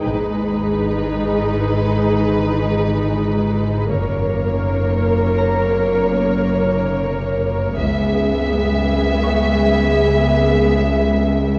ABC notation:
X:1
M:4/4
L:1/8
Q:1/4=62
K:G#m
V:1 name="Harp"
c'3 z4 z | z3 a4- a- | a z2 c'4- c' |]
V:2 name="Violin section"
B8 | c8 | e8 |]
V:3 name="Viola section"
[DG]8 | [A,A]8 | [B,G]8 |]
V:4 name="Cello section" clef=bass
G,,8 | F,,8 | C,,8 |]
V:5 name="Double bass section" clef=bass
G,,,2 z6 | F,,,2 z6 | C,,2 z6 |]
V:6 name="Synth drone" clef=bass
G,,,8 | F,,,8 | C,,8 |]